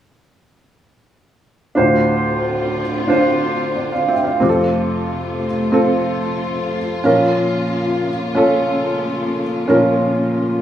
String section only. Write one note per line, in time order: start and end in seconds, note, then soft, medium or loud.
4.41 7.02 C3 medium
4.41 7.02 A3 soft
4.41 10.62 F4 medium
7.03 10.62 C#3 medium
7.03 10.62 A#3 medium